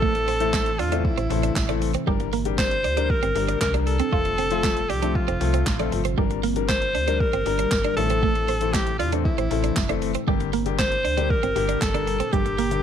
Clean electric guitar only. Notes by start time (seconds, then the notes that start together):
0.02 A3
0.15 muted clean electric guitar stroke
0.28 C4
0.54 muted clean electric guitar stroke
0.79 D4
0.92 D4
1.18 C4
1.31 muted clean electric guitar stroke
1.43 D4
1.69 D4
1.82 muted clean electric guitar stroke
1.95 C4
2.07 G3
2.20 muted clean electric guitar stroke
2.33 A#3
2.59 muted clean electric guitar stroke
2.84 D4
2.97 D4
3.23 C4
3.36 muted clean electric guitar stroke
3.48 D4
3.74 D4
3.87 muted clean electric guitar stroke
4.00 C4
4.13 F4
4.26 muted clean electric guitar stroke
4.38 C4
4.64 muted clean electric guitar stroke
4.90 D4
5.03 D4
5.28 C4
5.41 muted clean electric guitar stroke
5.54 C4
5.80 D4
5.92 muted clean electric guitar stroke
6.05 C4
6.18 G3
6.31 muted clean electric guitar stroke
6.43 A#3
6.69 muted clean electric guitar stroke
6.95 D4
7.08 D4
7.33 C4
7.46 muted clean electric guitar stroke
7.59 D4
7.85 D4
7.98 muted clean electric guitar stroke
8.10 C4
8.23 A3
8.36 muted clean electric guitar stroke
8.49 C4
8.74 muted clean electric guitar stroke
9.00 D4
9.13 D4
9.38 C4
9.51 muted clean electric guitar stroke
9.64 D4
9.89 D4
10.02 muted clean electric guitar stroke
10.15 C4
10.28 G3
10.41 muted clean electric guitar stroke
10.53 A#3
10.79 muted clean electric guitar stroke
11.05 D4
11.17 D4
11.43 C4
11.56 muted clean electric guitar stroke
11.69 D4
11.94 D4
12.07 muted clean electric guitar stroke
12.20 C4
12.33 G3
12.46 muted clean electric guitar stroke
12.59 A#3